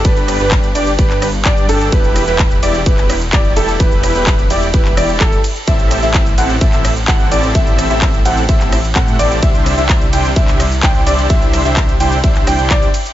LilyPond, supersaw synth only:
\new Staff \with { instrumentName = "Supersaw synth" } { \time 4/4 \key a \dorian \tempo 4 = 128 <d' g' b'>8. <d' g' b'>8 r16 <d' g' d''>8 <d' g' b'>8 r8 <d' g' d''>8 <d' g' a'>8 | <e' g' b'>8. <e' g' b'>8 r16 <e' g' d''>8 <e' g' b'>8 r8 <e' g' d''>8 <e' g' a'>8 | <e' g' b'>8. <e' g' b'>8 r16 <e' g' d''>8 <e' g' b'>8 <e' g' d''>8 <e' g' a'>8 r8 | <c' e' g' a' e''>8. <c' e' g' a' e''>8 r16 <c' e' g' a' fis''>8 <c' e' g' a' e''>8 r8 <c' e' g' a' fis''>8 <c' e' g' a' d''>8 |
<c' e' g' a' e''>8. <c' e' g' a' e''>8 r16 <c' e' g' a' fis''>8 <c' e' g' a' e''>8 r8 <c' e' g' a' fis''>8 <c' e' g' a' d''>8 | <d' e' g' c'' e''>8. <d' e' g' c'' e''>8 r16 <d' e' g' c'' g''>8 <d' e' g' c'' e''>8 r8 <d' e' g' c'' g''>8 <d' e' g' c'' d''>8 | <d' e' g' c'' e''>8. <d' e' g' c'' e''>8 r16 <d' e' g' c'' g''>8 <d' e' g' c'' e''>8 <d' e' g' c'' g''>8 <d' e' g' c'' d''>8 r8 | }